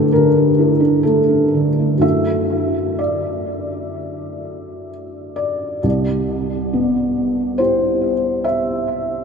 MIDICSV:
0, 0, Header, 1, 2, 480
1, 0, Start_track
1, 0, Tempo, 903614
1, 548, Tempo, 981997
1, 1034, Time_signature, 4, 2, 24, 8
1, 1508, Tempo, 949367
1, 2948, Tempo, 899550
1, 3428, Tempo, 863309
1, 4817, End_track
2, 0, Start_track
2, 0, Title_t, "Felt piano"
2, 0, Program_c, 0, 0
2, 0, Control_c, 0, 64, 127
2, 0, Note_on_c, 0, 43, 62
2, 0, Note_on_c, 0, 50, 42
2, 0, Note_on_c, 0, 57, 41
2, 0, Note_on_c, 0, 62, 46
2, 0, Note_on_c, 0, 64, 40
2, 0, Note_on_c, 0, 67, 67
2, 0, Note_on_c, 0, 69, 70
2, 0, Note_on_c, 0, 70, 67
2, 62, Note_off_c, 0, 69, 0
2, 66, Note_off_c, 0, 70, 0
2, 66, Note_on_c, 0, 70, 65
2, 81, Note_off_c, 0, 50, 0
2, 81, Note_on_c, 0, 50, 40
2, 141, Note_off_c, 0, 57, 0
2, 191, Note_off_c, 0, 62, 0
2, 191, Note_on_c, 0, 62, 37
2, 262, Note_off_c, 0, 50, 0
2, 312, Note_off_c, 0, 64, 0
2, 312, Note_on_c, 0, 64, 36
2, 379, Note_off_c, 0, 62, 0
2, 425, Note_on_c, 0, 62, 40
2, 429, Note_off_c, 0, 64, 0
2, 548, Note_off_c, 0, 70, 0
2, 548, Note_on_c, 0, 69, 60
2, 555, Note_on_c, 0, 57, 38
2, 618, Note_off_c, 0, 62, 0
2, 671, Note_on_c, 0, 62, 34
2, 741, Note_off_c, 0, 57, 0
2, 797, Note_on_c, 0, 50, 38
2, 864, Note_off_c, 0, 62, 0
2, 918, Note_on_c, 0, 57, 32
2, 990, Note_off_c, 0, 50, 0
2, 1009, Note_off_c, 0, 57, 0
2, 1011, Note_on_c, 0, 42, 40
2, 1016, Note_on_c, 0, 57, 33
2, 1024, Note_on_c, 0, 62, 33
2, 1029, Note_on_c, 0, 76, 68
2, 1030, Note_on_c, 0, 64, 35
2, 1034, Note_off_c, 0, 69, 0
2, 1044, Control_c, 0, 64, 0
2, 1047, Note_off_c, 0, 43, 0
2, 1049, Note_off_c, 0, 67, 0
2, 1131, Control_c, 0, 64, 127
2, 1503, Note_on_c, 0, 74, 47
2, 1506, Note_off_c, 0, 76, 0
2, 2468, Note_off_c, 0, 74, 0
2, 2703, Note_on_c, 0, 74, 55
2, 2916, Note_off_c, 0, 42, 0
2, 2919, Note_off_c, 0, 57, 0
2, 2923, Note_off_c, 0, 62, 0
2, 2926, Note_off_c, 0, 64, 0
2, 2942, Note_on_c, 0, 36, 54
2, 2958, Control_c, 0, 64, 0
2, 3047, Control_c, 0, 64, 127
2, 3421, Note_on_c, 0, 59, 43
2, 3893, Note_on_c, 0, 72, 66
2, 3900, Note_on_c, 0, 64, 35
2, 3904, Note_on_c, 0, 67, 43
2, 3907, Note_off_c, 0, 74, 0
2, 4196, Note_off_c, 0, 59, 0
2, 4374, Note_on_c, 0, 76, 67
2, 4381, Note_off_c, 0, 72, 0
2, 4817, Note_off_c, 0, 36, 0
2, 4817, Note_off_c, 0, 64, 0
2, 4817, Note_off_c, 0, 67, 0
2, 4817, Note_off_c, 0, 76, 0
2, 4817, End_track
0, 0, End_of_file